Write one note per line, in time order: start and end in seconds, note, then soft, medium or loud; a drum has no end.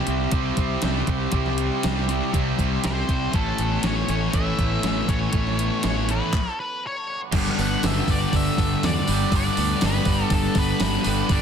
0.00 0.30 C3 medium
0.00 0.32 G3 medium
0.00 0.33 G3 medium
0.00 0.33 C4 medium
0.00 0.59 C4 medium
0.00 0.34 E4 medium
0.00 3.31 G4 medium
0.00 3.31 E5 medium
0.00 3.31 C6 medium
0.07 0.26 C2 medium
0.07 0.81 C3 medium
0.07 0.82 G3 medium
0.07 0.81 C4 medium
0.07 0.84 E4 medium
0.07 closed hi-hat medium
0.31 0.50 C2 medium
0.31 1.30 C3 medium
0.31 1.31 G3 medium
0.31 1.34 G3 medium
0.31 1.32 C4 medium
0.31 kick medium
0.31 closed hi-hat medium
0.35 1.35 E4 medium
0.57 0.76 C2 medium
0.57 1.59 C4 medium
0.57 kick medium
0.57 closed hi-hat medium
0.82 1.01 C2 medium
0.82 1.31 C3 medium
0.82 1.32 G3 medium
0.82 1.32 C4 medium
0.82 2.10 E4 medium
0.82 snare loud
0.82 closed hi-hat medium
1.07 1.26 C2 medium
1.07 2.34 G4 medium
1.07 kick medium
1.07 closed hi-hat medium
1.31 1.69 C2 medium
1.31 2.30 C3 medium
1.31 2.32 G3 medium
1.31 2.32 C4 medium
1.31 2.35 E4 medium
1.31 kick loud
1.31 closed hi-hat medium
1.35 1.84 G3 medium
1.46 snare soft
1.58 2.59 C4 medium
1.58 closed hi-hat medium
1.83 2.20 C2 medium
1.83 2.34 G3 medium
1.83 snare loud
1.83 closed hi-hat medium
2.08 2.82 C3 medium
2.08 2.83 G3 medium
2.08 2.82 C4 medium
2.08 2.85 E4 medium
2.08 closed hi-hat medium
2.31 2.51 C2 medium
2.31 3.31 C3 medium
2.31 3.32 G3 medium
2.31 3.33 C4 medium
2.31 kick medium
2.31 closed hi-hat medium
2.36 3.35 G3 medium
2.36 3.35 E4 medium
2.59 2.77 C2 medium
2.59 3.35 C4 medium
2.59 kick medium
2.59 closed hi-hat medium
2.84 3.02 C2 medium
2.84 3.32 C3 medium
2.84 3.33 G3 medium
2.84 3.33 C4 medium
2.84 4.10 E4 medium
2.84 3.37 C5 medium
2.84 snare loud
2.84 closed hi-hat medium
3.09 3.27 C2 medium
3.09 3.34 G4 medium
3.09 kick medium
3.09 closed hi-hat medium
3.31 3.52 A1 medium
3.31 4.32 A2 medium
3.31 4.33 E3 medium
3.31 4.34 A3 loud
3.31 4.34 C#4 medium
3.31 6.31 A4 medium
3.31 3.86 A4 medium
3.31 6.31 C#5 medium
3.31 6.31 B5 medium
3.31 kick medium
3.31 closed hi-hat medium
3.35 3.84 E3 medium
3.35 4.36 E4 medium
3.58 3.77 A1 medium
3.58 4.59 B3 medium
3.58 closed hi-hat medium
3.83 4.02 A1 medium
3.83 4.34 E3 medium
3.83 4.09 C#5 medium
3.83 snare loud
3.83 closed hi-hat medium
4.08 4.27 A1 medium
4.08 4.82 A2 medium
4.08 4.83 E3 medium
4.08 4.82 A3 medium
4.08 4.84 C#4 medium
4.08 4.35 C#5 medium
4.08 closed hi-hat medium
4.32 4.52 A1 medium
4.32 5.31 A2 medium
4.32 5.32 E3 medium
4.32 5.33 E3 medium
4.32 5.33 A3 medium
4.32 5.33 C#4 medium
4.32 5.33 E4 medium
4.32 5.12 E5 loud
4.32 kick medium
4.32 closed hi-hat medium
4.59 4.77 A1 medium
4.59 5.59 B3 medium
4.59 kick medium
4.59 closed hi-hat medium
4.83 5.02 A1 medium
4.83 5.31 A2 medium
4.83 5.32 E3 medium
4.83 5.33 A3 medium
4.83 6.09 C#4 medium
4.83 snare medium
4.83 closed hi-hat medium
5.08 5.27 A1 medium
5.08 6.34 A4 medium
5.08 5.84 C#5 medium
5.08 kick medium
5.08 closed hi-hat medium
5.32 5.69 A1 medium
5.32 6.31 A2 medium
5.32 6.32 E3 medium
5.32 5.83 E3 medium
5.32 6.33 A3 medium
5.32 6.33 C#4 medium
5.32 6.33 E4 loud
5.32 kick medium
5.32 closed hi-hat medium
5.47 snare soft
5.59 6.34 B3 medium
5.59 closed hi-hat medium
5.83 6.20 A1 medium
5.83 6.34 E3 medium
5.83 6.10 C#5 medium
5.83 snare loud
5.83 closed hi-hat medium
6.08 6.33 A2 medium
6.08 6.33 E3 medium
6.08 6.32 A3 medium
6.08 6.34 C#4 medium
6.08 6.59 B4 medium
6.08 closed hi-hat medium
6.33 kick loud
6.33 clap medium
6.60 6.83 B4 medium
6.87 7.20 C#5 medium
7.32 7.49 G1 medium
7.32 9.10 G2 medium
7.32 9.06 D3 medium
7.32 9.09 G3 medium
7.32 8.10 G3 medium
7.32 9.08 B3 loud
7.32 11.42 A4 medium
7.32 11.26 G5 medium
7.32 11.42 B5 medium
7.32 kick loud
7.32 open hi-hat medium
7.32 crash loud
7.36 9.06 D4 loud
7.46 snare soft
7.59 7.75 G1 medium
7.59 7.84 B3 medium
7.59 7.86 F#5 medium
7.59 open hi-hat medium
7.83 8.00 G1 medium
7.83 9.58 B3 medium
7.83 8.10 E5 medium
7.83 snare loud
7.83 open hi-hat medium
8.08 8.24 G1 medium
8.08 9.09 G3 medium
8.08 8.35 D5 medium
8.08 kick medium
8.08 open hi-hat medium
8.33 8.49 G1 medium
8.33 8.84 D4 medium
8.33 8.85 E5 loud
8.33 kick loud
8.33 open hi-hat medium
8.58 8.74 G1 medium
8.58 9.86 A4 medium
8.58 kick medium
8.58 open hi-hat medium
8.83 8.99 E2 medium
8.83 10.32 D4 medium
8.83 9.35 D5 medium
8.83 snare loud
8.83 open hi-hat medium
9.07 9.24 G1 medium
9.07 9.31 D3 medium
9.07 9.33 G3 medium
9.07 9.34 B3 medium
9.07 9.34 D4 medium
9.07 open hi-hat medium
9.11 9.31 G2 medium
9.31 9.48 G1 medium
9.31 11.08 G2 medium
9.31 11.04 D3 medium
9.31 11.06 G3 loud
9.31 10.07 G3 medium
9.31 11.04 B3 loud
9.31 11.03 D4 medium
9.31 kick loud
9.31 open hi-hat medium
9.36 9.85 D5 loud
9.57 9.74 D2 medium
9.57 9.82 B3 medium
9.57 open hi-hat medium
9.81 9.98 G1 medium
9.81 11.42 B3 medium
9.81 snare loud
9.81 open hi-hat medium
9.85 10.34 B4 medium
10.05 10.22 G1 medium
10.05 11.07 G3 medium
10.05 kick medium
10.05 open hi-hat medium
10.30 10.47 G1 medium
10.30 10.82 D4 medium
10.30 10.58 A4 medium
10.30 kick loud
10.30 open hi-hat medium
10.55 10.72 G1 medium
10.55 11.42 A4 medium
10.55 kick medium
10.55 open hi-hat medium
10.59 11.34 B4 loud
10.80 10.97 G1 medium
10.80 11.42 D4 medium
10.80 snare loud
10.80 open hi-hat medium
11.04 11.22 G1 medium
11.04 11.28 D3 medium
11.04 11.30 G3 medium
11.04 11.32 G3 medium
11.04 11.30 B3 medium
11.04 11.32 D4 loud
11.04 open hi-hat medium
11.08 11.27 G2 medium
11.28 11.42 G1 medium
11.28 11.42 G2 loud
11.28 11.42 D3 medium
11.28 11.42 G3 loud
11.28 11.42 B3 loud
11.28 11.42 A5 medium
11.28 kick loud
11.28 open hi-hat medium
11.32 11.42 G3 medium
11.32 11.42 D4 loud
11.32 11.42 D5 loud